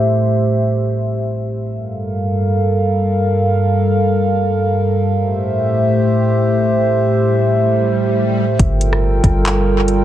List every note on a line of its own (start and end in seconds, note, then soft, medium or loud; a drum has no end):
0.00 1.70 A2 medium
0.00 1.70 A3 medium
0.00 1.70 G4 medium
0.00 1.70 C5 medium
0.00 1.70 E5 medium
1.73 5.13 G2 medium
1.73 5.13 G3 medium
1.73 5.13 A4 medium
1.73 5.13 A#4 medium
1.73 5.13 F5 medium
5.16 8.56 A2 medium
5.16 8.56 A3 medium
5.16 8.56 G4 medium
5.16 8.56 C5 medium
5.16 8.56 E5 medium
6.88 swell medium
8.59 9.21 G1 loud
8.59 10.04 G3 medium
8.59 10.04 F4 medium
8.59 10.04 A4 medium
8.59 10.04 A#4 medium
8.59 10.04 G5 medium
8.59 kick loud
8.59 closed hi-hat medium
8.81 closed hi-hat medium
8.93 cross-stick medium
9.24 10.04 G1 loud
9.24 kick loud
9.24 closed hi-hat medium
9.45 clap loud
9.45 closed hi-hat medium
9.88 closed hi-hat medium